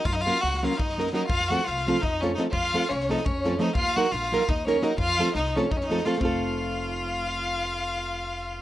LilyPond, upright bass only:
\new Staff \with { instrumentName = "Upright bass" } { \clef bass \time 7/8 \tempo 4 = 171 ges,4 des,4 ges,4. | f,4 c,4 f,4. | f,4 c,4 f,4. | ees,4 bes,,4 ees,4. |
f,4 c,4 f,4. | f,,2.~ f,,8~ | f,,2.~ f,,8 | }